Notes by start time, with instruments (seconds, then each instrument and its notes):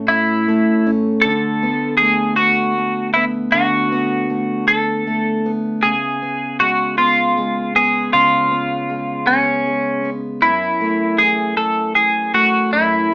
Already playing: steel-string acoustic guitar A2 A3
0.08 steel-string acoustic guitar C#4, clean electric guitar E4
0.48 steel-string acoustic guitar A3
0.87 steel-string acoustic guitar C#4
1.22 steel-string acoustic guitar D3, clean electric guitar A4
1.63 steel-string acoustic guitar B3
1.98 steel-string acoustic guitar A3, clean electric guitar G#4
2.36 steel-string acoustic guitar B3, clean electric guitar F#4
2.78 steel-string acoustic guitar A3
3.14 steel-string acoustic guitar B3, clean electric guitar E4
3.52 steel-string acoustic guitar D3, clean electric guitar F#4
3.92 steel-string acoustic guitar B3
4.30 steel-string acoustic guitar A3
4.68 steel-string acoustic guitar B3, clean electric guitar A4
5.07 steel-string acoustic guitar A3
5.46 steel-string acoustic guitar B3
5.83 steel-string acoustic guitar C#3, clean electric guitar G#4
6.22 steel-string acoustic guitar B3
6.60 steel-string acoustic guitar G#3, clean electric guitar F#4
6.98 steel-string acoustic guitar B3, clean electric guitar F4
7.38 steel-string acoustic guitar G#3
7.76 steel-string acoustic guitar B3, clean electric guitar G#4
8.13 steel-string acoustic guitar C#3, clean electric guitar F4
8.52 steel-string acoustic guitar B3
8.90 steel-string acoustic guitar G#3
9.27 steel-string acoustic guitar B3, clean electric guitar C#4
9.67 steel-string acoustic guitar G#3
10.05 steel-string acoustic guitar B3
10.42 steel-string acoustic guitar F#2, clean electric guitar E4
10.81 steel-string acoustic guitar A3
11.18 steel-string acoustic guitar E3, clean electric guitar G#4
11.57 steel-string acoustic guitar A3, clean electric guitar A4
11.95 steel-string acoustic guitar E3, clean electric guitar G#4
12.34 steel-string acoustic guitar A3, clean electric guitar F#4
12.73 steel-string acoustic guitar F#2, clean electric guitar E4